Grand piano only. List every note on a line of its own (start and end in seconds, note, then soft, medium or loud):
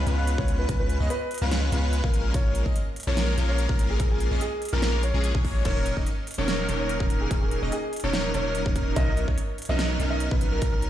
0.18 0.34 F5 medium
0.38 0.55 C#5 medium
0.59 0.75 B4 medium
0.80 1.04 B4 loud
1.10 1.35 B4 loud
1.41 1.66 F5 loud
1.72 1.97 F5 loud
2.34 2.59 C#5 loud
3.07 3.40 C#5 loud
3.48 3.65 C#5 medium
3.69 3.86 A#4 medium
3.90 4.06 G#4 medium
4.11 4.35 G#4 loud
4.41 4.66 G#4 loud
4.73 4.97 A#4 loud
5.03 5.29 C#5 loud
5.65 5.91 C#5 loud
6.38 6.71 C#5 loud
6.79 6.96 C#5 medium
7.00 7.17 A#4 medium
7.21 7.37 G#4 medium
7.41 7.66 G#4 medium
7.72 7.97 G#4 medium
8.04 8.29 C#5 loud
8.34 8.60 C#5 medium
8.96 9.22 D#5 loud
9.69 10.02 D#5 loud
10.10 10.27 D#5 medium
10.31 10.48 B4 medium
10.52 10.68 A#4 medium
10.73 10.90 A#4 medium